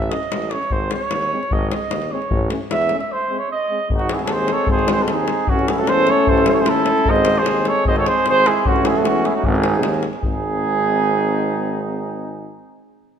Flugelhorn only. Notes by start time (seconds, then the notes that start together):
Already playing: E5
0.10 D#5
0.51 C#5
0.72 C5
0.92 C#5
1.53 D#5
1.70 D#5
2.11 C#5
2.71 E5
2.99 E5
3.12 C5
3.38 C#5
3.51 D#5
3.95 F#4
4.14 G#4
4.22 G#4 A4
4.28 A4 C5
4.53 C#5
4.71 C5
4.92 C5
5.02 A4
5.12 G#4
5.49 F#4
5.69 G#4
5.79 A4
5.89 C5
6.10 C#5
6.29 C5
6.48 C5
6.54 C#5
6.60 C5
6.69 A4
7.10 D#5
7.38 C5
7.69 C#5
7.87 D#5
7.98 C#5
8.08 C5
8.29 C5
8.47 G#4
8.66 F#4
8.86 G#4
8.97 A4
9.05 F#4
9.26 G#4
9.35 F#4
9.45 G#4
10.22 G#4